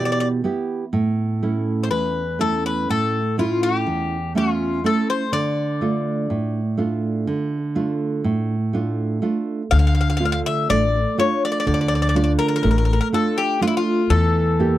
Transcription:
Already playing: B2 B3 E4 G4
0.05 D5
0.12 D5
0.20 D5
0.44 B3 E4 G4
0.93 A2
1.43 A3 C#4 E4
1.83 C5
1.91 E2 B4
2.39 A3 C#4 E4 A4
2.66 B4
2.89 A2 A4
3.38 A3 C#4 E4 F4
3.63 G4
3.87 E2
4.35 A3 C#4 F4 E5
4.84 A3 C#4 E4 A4
5.10 C5
5.32 D3 D5
5.81 A3 D4 F4
6.30 A2
6.77 A3 D4 F4
7.27 D3
7.75 A3 D4 F4
8.24 A2
8.73 A3 D4 F4
9.22 A3 D4 F4
9.71 D2 D3 F5
9.79 F5
9.87 F5
9.95 F5
10.01 F5
10.10 F5
10.17 A3 D4 F4 F5
10.25 F5
10.32 F5
10.46 E5
10.69 A1 A3 D5
11.18 A3 D4 F4 C#5
11.45 D5
11.52 D5
11.60 D5
11.66 D2 D3 D5
11.74 D5
11.81 D5
11.88 D5
11.95 D5
12.02 D5
12.09 D5
12.15 A3 D4 F4 D5
12.24 D5
12.39 A#4
12.48 A#4
12.56 A#4
12.63 A1 A3 A#4
12.71 A#4
12.78 A#4
12.85 A#4
12.93 A#4
13.01 A#4
13.12 A3 D4 F4 A4
13.38 G4
13.61 A3 D4 F4
13.67 E4
13.77 F4
14.10 E2 E3 A4
14.60 A#3 E4 G4

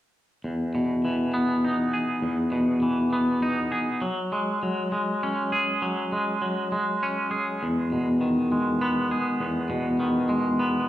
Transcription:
0.44 E2
0.75 B2
1.05 E3
1.34 B3
1.65 D#4
1.94 G#4
2.22 E2
2.52 B2
2.82 E3
3.13 B3
3.42 D#4
3.72 G#4
4.02 F#3
4.32 G#3
4.63 F#3
4.92 G#3
5.23 C#4
5.52 G#4
5.82 F#3
6.12 G#3
6.42 F#3
6.72 G#3
7.03 C#4
7.31 G#4
7.63 E2
7.92 B2
8.21 D#3
8.52 G#3
8.81 B3
9.11 G#4
9.40 E2
9.70 B2
10.00 D#3
10.29 G#3
10.59 B3

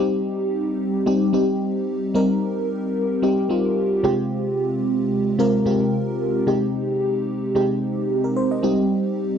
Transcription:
Already playing: G3
0.00 C4 D#4 G4
1.06 G3 C4 D#4 G4
1.33 G3 C4 D#4 G4
2.14 G3 C4 D#4 A#4
3.22 G3 C4 D#4 G4
3.49 G3 C4 D#4 F4
4.03 C3 G#3 C4 F4 G4
5.38 C3 G#3 C4 F4 A#4
5.65 C3 G#3 C4 F4 G4
6.47 C3 G#3 C4 D#4 G4
7.55 C3 G#3 C4 D#4 G4
8.24 A#4
8.36 C5
8.51 D#5
8.63 G3 C4 D#4 G4

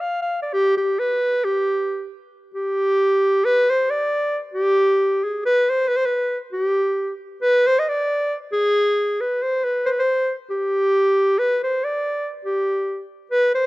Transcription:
0.00 F5
0.22 F5
0.42 D5
0.53 G4
0.77 G4
0.99 B4
1.45 G4
2.54 G4
3.45 B4
3.70 C5
3.90 D5
4.54 G4
5.24 G#4
5.46 B4
5.70 C5
5.88 B4
5.96 C5
6.06 B4
6.53 G4
7.41 B4
7.67 C5
7.79 D#5
7.89 D5
8.52 G#4
9.21 B4
9.42 C5
9.64 B4
9.86 B4 C5
9.99 C5
10.50 G4
11.39 B4
11.63 C5
11.84 D5
12.45 G4
13.31 B4
13.55 C5

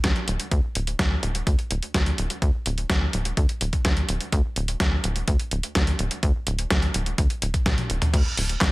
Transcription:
0.04 D2, kick, snare, closed hi-hat
0.16 closed hi-hat
0.28 D1, closed hi-hat
0.40 closed hi-hat
0.51 D2, kick, closed hi-hat
0.75 D1, closed hi-hat
0.87 closed hi-hat
0.99 D2, kick, snare, closed hi-hat
1.23 D1, closed hi-hat
1.35 closed hi-hat
1.47 D2, kick, closed hi-hat
1.59 closed hi-hat
1.71 D1, closed hi-hat
1.83 closed hi-hat
1.94 D2, kick, snare, closed hi-hat
2.06 closed hi-hat
2.18 D1, closed hi-hat
2.30 closed hi-hat
2.42 D2, kick, closed hi-hat
2.66 D1, closed hi-hat
2.78 closed hi-hat
2.90 D2, kick, snare, closed hi-hat
3.13 D1, closed hi-hat
3.25 closed hi-hat
3.37 D2, kick, closed hi-hat
3.49 closed hi-hat
3.61 D1, closed hi-hat
3.73 kick, closed hi-hat
3.85 D2, kick, snare, closed hi-hat
3.97 closed hi-hat
4.09 D1, closed hi-hat
4.21 closed hi-hat
4.32 D2, kick, closed hi-hat
4.56 D1, closed hi-hat
4.68 closed hi-hat
4.80 D2, kick, snare, closed hi-hat
5.04 D1, closed hi-hat
5.16 closed hi-hat
5.28 D2, kick, closed hi-hat
5.40 closed hi-hat
5.51 D1, closed hi-hat
5.63 closed hi-hat
5.75 D2, kick, snare, closed hi-hat
5.87 closed hi-hat
5.99 D1, closed hi-hat
6.11 closed hi-hat
6.23 D2, kick, closed hi-hat
6.47 D1, closed hi-hat
6.59 closed hi-hat
6.70 D2, kick, snare, closed hi-hat
6.82 closed hi-hat
6.94 D1, closed hi-hat
7.06 closed hi-hat
7.18 D2, kick, closed hi-hat
7.30 closed hi-hat
7.42 D1, closed hi-hat
7.54 kick, closed hi-hat
7.66 D2, kick, snare, closed hi-hat, high tom
7.78 closed hi-hat, high tom
7.90 D1, closed hi-hat
8.02 closed hi-hat, mid tom
8.14 D2, kick, closed hi-hat, crash
8.37 D1, open hi-hat
8.49 closed hi-hat
8.61 D2, kick, snare, clap, closed hi-hat

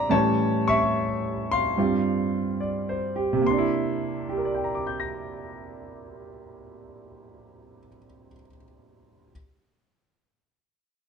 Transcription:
Already playing: G2 D3 F3 C4 D5 E5 A#5 C6
0.09 A2 E3 G3 C#4 C#5 A5
0.68 E5 C#6
1.52 F5 C6
1.77 G2 G3 C4 F4
2.61 D5
2.89 C5
3.16 G4
3.33 C3
3.42 A#3
3.47 D4 C6
3.58 E4
4.29 G4
4.37 A#4
4.45 D5
4.55 G5
4.64 A#5
4.75 D6
4.87 G6
5.00 A#6

